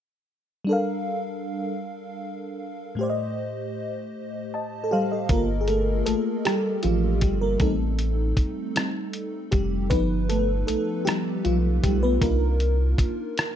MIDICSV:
0, 0, Header, 1, 4, 480
1, 0, Start_track
1, 0, Key_signature, -2, "minor"
1, 0, Tempo, 769231
1, 422, Time_signature, 6, 3, 24, 8
1, 8460, End_track
2, 0, Start_track
2, 0, Title_t, "FM electric piano"
2, 0, Program_c, 0, 5
2, 402, Note_on_c, 0, 55, 54
2, 418, Note_on_c, 0, 62, 48
2, 432, Note_on_c, 0, 69, 51
2, 443, Note_on_c, 0, 70, 54
2, 454, Note_on_c, 0, 77, 63
2, 544, Control_c, 0, 64, 127
2, 1827, Note_off_c, 0, 55, 0
2, 1835, Note_off_c, 0, 62, 0
2, 1842, Note_off_c, 0, 69, 0
2, 1842, Note_on_c, 0, 45, 57
2, 1848, Note_off_c, 0, 70, 0
2, 1851, Note_on_c, 0, 57, 51
2, 1853, Note_off_c, 0, 77, 0
2, 1865, Note_on_c, 0, 67, 52
2, 1869, Control_c, 0, 64, 0
2, 1878, Note_on_c, 0, 72, 53
2, 1892, Note_on_c, 0, 74, 54
2, 1917, Note_off_c, 0, 74, 0
2, 1932, Note_on_c, 0, 75, 67
2, 1965, Control_c, 0, 64, 127
2, 2811, Note_off_c, 0, 72, 0
2, 2830, Note_off_c, 0, 75, 0
2, 2833, Note_on_c, 0, 81, 47
2, 2838, Note_on_c, 0, 75, 41
2, 3019, Note_on_c, 0, 69, 50
2, 3056, Note_off_c, 0, 81, 0
2, 3058, Note_off_c, 0, 67, 0
2, 3058, Note_off_c, 0, 75, 0
2, 3062, Note_off_c, 0, 69, 0
2, 3066, Note_on_c, 0, 67, 64
2, 3073, Note_on_c, 0, 77, 54
2, 3076, Note_on_c, 0, 72, 42
2, 3077, Note_on_c, 0, 55, 51
2, 3182, Note_off_c, 0, 77, 0
2, 3183, Note_off_c, 0, 72, 0
2, 3192, Note_on_c, 0, 75, 48
2, 3200, Note_on_c, 0, 69, 43
2, 3267, Note_off_c, 0, 45, 0
2, 3272, Note_off_c, 0, 57, 0
2, 3293, Note_off_c, 0, 55, 0
2, 3305, Note_off_c, 0, 69, 0
2, 3309, Note_on_c, 0, 70, 83
2, 3311, Note_off_c, 0, 67, 0
2, 3311, Control_c, 0, 64, 0
2, 3312, Note_on_c, 0, 69, 45
2, 3314, Note_on_c, 0, 58, 39
2, 3320, Note_on_c, 0, 65, 51
2, 3323, Note_off_c, 0, 58, 0
2, 3323, Note_on_c, 0, 58, 69
2, 3415, Note_off_c, 0, 75, 0
2, 3415, Control_c, 0, 64, 127
2, 3488, Note_off_c, 0, 70, 0
2, 3496, Note_off_c, 0, 58, 0
2, 3500, Note_on_c, 0, 68, 53
2, 3536, Note_off_c, 0, 69, 0
2, 3543, Note_off_c, 0, 68, 0
2, 3543, Note_on_c, 0, 69, 72
2, 3555, Note_on_c, 0, 57, 60
2, 3630, Note_off_c, 0, 65, 0
2, 3766, Note_off_c, 0, 69, 0
2, 3772, Note_off_c, 0, 57, 0
2, 3781, Note_on_c, 0, 69, 76
2, 3791, Note_on_c, 0, 57, 58
2, 4010, Note_off_c, 0, 57, 0
2, 4026, Note_on_c, 0, 67, 81
2, 4029, Note_off_c, 0, 69, 0
2, 4031, Note_on_c, 0, 55, 60
2, 4250, Note_off_c, 0, 55, 0
2, 4263, Note_on_c, 0, 65, 69
2, 4270, Note_on_c, 0, 53, 55
2, 4271, Note_off_c, 0, 67, 0
2, 4350, Note_off_c, 0, 65, 0
2, 4358, Note_off_c, 0, 53, 0
2, 4507, Note_on_c, 0, 67, 61
2, 4514, Note_on_c, 0, 55, 52
2, 4620, Note_off_c, 0, 55, 0
2, 4626, Note_on_c, 0, 70, 69
2, 4628, Note_off_c, 0, 67, 0
2, 4636, Note_on_c, 0, 58, 60
2, 4741, Note_off_c, 0, 58, 0
2, 4748, Note_off_c, 0, 70, 0
2, 4748, Note_on_c, 0, 55, 49
2, 4749, Note_on_c, 0, 69, 75
2, 4750, Control_c, 0, 64, 0
2, 4751, Note_on_c, 0, 60, 44
2, 4757, Note_on_c, 0, 57, 53
2, 4757, Note_on_c, 0, 63, 54
2, 4868, Control_c, 0, 64, 127
2, 5458, Note_off_c, 0, 55, 0
2, 5461, Note_off_c, 0, 63, 0
2, 5462, Note_off_c, 0, 60, 0
2, 5466, Note_on_c, 0, 55, 44
2, 5469, Note_on_c, 0, 60, 36
2, 5469, Note_on_c, 0, 63, 44
2, 5680, Note_off_c, 0, 55, 0
2, 5681, Note_off_c, 0, 69, 0
2, 5682, Note_off_c, 0, 60, 0
2, 5682, Note_off_c, 0, 63, 0
2, 5685, Note_off_c, 0, 57, 0
2, 5937, Note_on_c, 0, 67, 74
2, 5952, Note_on_c, 0, 55, 58
2, 6163, Note_off_c, 0, 67, 0
2, 6170, Note_off_c, 0, 55, 0
2, 6178, Note_on_c, 0, 71, 86
2, 6184, Note_on_c, 0, 53, 47
2, 6188, Note_on_c, 0, 59, 44
2, 6191, Control_c, 0, 64, 0
2, 6191, Note_on_c, 0, 63, 55
2, 6193, Note_off_c, 0, 59, 0
2, 6193, Note_on_c, 0, 59, 67
2, 6306, Control_c, 0, 64, 127
2, 6411, Note_off_c, 0, 59, 0
2, 6423, Note_on_c, 0, 69, 69
2, 6427, Note_off_c, 0, 71, 0
2, 6437, Note_on_c, 0, 57, 57
2, 6652, Note_off_c, 0, 69, 0
2, 6653, Note_off_c, 0, 57, 0
2, 6660, Note_on_c, 0, 69, 77
2, 6672, Note_on_c, 0, 57, 59
2, 6890, Note_off_c, 0, 57, 0
2, 6895, Note_off_c, 0, 53, 0
2, 6895, Note_on_c, 0, 67, 74
2, 6901, Note_off_c, 0, 63, 0
2, 6902, Note_on_c, 0, 53, 43
2, 6905, Note_on_c, 0, 59, 39
2, 6908, Note_off_c, 0, 69, 0
2, 6909, Note_on_c, 0, 63, 48
2, 6910, Note_on_c, 0, 55, 61
2, 6982, Note_off_c, 0, 67, 0
2, 6997, Note_off_c, 0, 55, 0
2, 7118, Note_off_c, 0, 53, 0
2, 7120, Note_off_c, 0, 59, 0
2, 7122, Note_off_c, 0, 63, 0
2, 7142, Note_on_c, 0, 65, 70
2, 7154, Note_on_c, 0, 53, 53
2, 7372, Note_off_c, 0, 53, 0
2, 7385, Note_on_c, 0, 67, 65
2, 7389, Note_off_c, 0, 65, 0
2, 7394, Note_on_c, 0, 55, 54
2, 7500, Note_off_c, 0, 55, 0
2, 7505, Note_on_c, 0, 71, 70
2, 7507, Note_off_c, 0, 67, 0
2, 7514, Note_on_c, 0, 59, 59
2, 7559, Note_off_c, 0, 71, 0
2, 7565, Note_off_c, 0, 59, 0
2, 7622, Note_on_c, 0, 70, 79
2, 7626, Note_on_c, 0, 58, 45
2, 7626, Note_on_c, 0, 62, 44
2, 7629, Note_on_c, 0, 63, 45
2, 7631, Control_c, 0, 64, 0
2, 7632, Note_off_c, 0, 58, 0
2, 7632, Note_on_c, 0, 58, 60
2, 7633, Note_on_c, 0, 65, 51
2, 7757, Control_c, 0, 64, 127
2, 8460, Note_off_c, 0, 58, 0
2, 8460, Note_off_c, 0, 62, 0
2, 8460, Note_off_c, 0, 63, 0
2, 8460, Note_off_c, 0, 65, 0
2, 8460, Note_off_c, 0, 70, 0
2, 8460, End_track
3, 0, Start_track
3, 0, Title_t, "Analog synth bass"
3, 0, Program_c, 1, 38
3, 3311, Note_on_c, 1, 31, 79
3, 3761, Note_off_c, 1, 31, 0
3, 3794, Note_on_c, 1, 33, 48
3, 3839, Note_off_c, 1, 33, 0
3, 4273, Note_on_c, 1, 33, 84
3, 4511, Note_on_c, 1, 31, 74
3, 4520, Note_off_c, 1, 33, 0
3, 4723, Note_off_c, 1, 31, 0
3, 4747, Note_on_c, 1, 33, 92
3, 5199, Note_off_c, 1, 33, 0
3, 5227, Note_on_c, 1, 29, 46
3, 5274, Note_off_c, 1, 29, 0
3, 5951, Note_on_c, 1, 29, 88
3, 6187, Note_on_c, 1, 31, 91
3, 6196, Note_off_c, 1, 29, 0
3, 6640, Note_off_c, 1, 31, 0
3, 6670, Note_on_c, 1, 35, 44
3, 6716, Note_off_c, 1, 35, 0
3, 7149, Note_on_c, 1, 35, 75
3, 7362, Note_off_c, 1, 35, 0
3, 7391, Note_on_c, 1, 35, 86
3, 7603, Note_off_c, 1, 35, 0
3, 7626, Note_on_c, 1, 36, 94
3, 8079, Note_off_c, 1, 36, 0
3, 8107, Note_on_c, 1, 29, 45
3, 8154, Note_off_c, 1, 29, 0
3, 8460, End_track
4, 0, Start_track
4, 0, Title_t, "Drums"
4, 3302, Note_on_c, 9, 42, 61
4, 3303, Note_on_c, 9, 36, 94
4, 3365, Note_off_c, 9, 42, 0
4, 3366, Note_off_c, 9, 36, 0
4, 3542, Note_on_c, 9, 42, 48
4, 3604, Note_off_c, 9, 42, 0
4, 3784, Note_on_c, 9, 42, 62
4, 3847, Note_off_c, 9, 42, 0
4, 4027, Note_on_c, 9, 42, 63
4, 4036, Note_on_c, 9, 37, 98
4, 4089, Note_off_c, 9, 42, 0
4, 4098, Note_off_c, 9, 37, 0
4, 4260, Note_on_c, 9, 42, 45
4, 4323, Note_off_c, 9, 42, 0
4, 4501, Note_on_c, 9, 42, 54
4, 4505, Note_on_c, 9, 36, 69
4, 4564, Note_off_c, 9, 42, 0
4, 4568, Note_off_c, 9, 36, 0
4, 4740, Note_on_c, 9, 42, 59
4, 4742, Note_on_c, 9, 36, 90
4, 4803, Note_off_c, 9, 42, 0
4, 4805, Note_off_c, 9, 36, 0
4, 4983, Note_on_c, 9, 42, 48
4, 5046, Note_off_c, 9, 42, 0
4, 5221, Note_on_c, 9, 36, 62
4, 5223, Note_on_c, 9, 42, 60
4, 5284, Note_off_c, 9, 36, 0
4, 5286, Note_off_c, 9, 42, 0
4, 5466, Note_on_c, 9, 42, 66
4, 5474, Note_on_c, 9, 37, 102
4, 5528, Note_off_c, 9, 42, 0
4, 5537, Note_off_c, 9, 37, 0
4, 5700, Note_on_c, 9, 42, 47
4, 5762, Note_off_c, 9, 42, 0
4, 5940, Note_on_c, 9, 42, 57
4, 5944, Note_on_c, 9, 36, 70
4, 6002, Note_off_c, 9, 42, 0
4, 6007, Note_off_c, 9, 36, 0
4, 6181, Note_on_c, 9, 36, 86
4, 6182, Note_on_c, 9, 42, 62
4, 6244, Note_off_c, 9, 36, 0
4, 6245, Note_off_c, 9, 42, 0
4, 6425, Note_on_c, 9, 42, 49
4, 6487, Note_off_c, 9, 42, 0
4, 6666, Note_on_c, 9, 42, 57
4, 6728, Note_off_c, 9, 42, 0
4, 6909, Note_on_c, 9, 42, 66
4, 6918, Note_on_c, 9, 37, 99
4, 6972, Note_off_c, 9, 42, 0
4, 6980, Note_off_c, 9, 37, 0
4, 7143, Note_on_c, 9, 42, 46
4, 7206, Note_off_c, 9, 42, 0
4, 7386, Note_on_c, 9, 36, 69
4, 7386, Note_on_c, 9, 42, 55
4, 7448, Note_off_c, 9, 36, 0
4, 7448, Note_off_c, 9, 42, 0
4, 7623, Note_on_c, 9, 36, 88
4, 7623, Note_on_c, 9, 42, 60
4, 7685, Note_off_c, 9, 36, 0
4, 7686, Note_off_c, 9, 42, 0
4, 7863, Note_on_c, 9, 42, 50
4, 7925, Note_off_c, 9, 42, 0
4, 8102, Note_on_c, 9, 36, 71
4, 8106, Note_on_c, 9, 42, 56
4, 8164, Note_off_c, 9, 36, 0
4, 8168, Note_off_c, 9, 42, 0
4, 8346, Note_on_c, 9, 42, 64
4, 8355, Note_on_c, 9, 37, 99
4, 8409, Note_off_c, 9, 42, 0
4, 8417, Note_off_c, 9, 37, 0
4, 8460, End_track
0, 0, End_of_file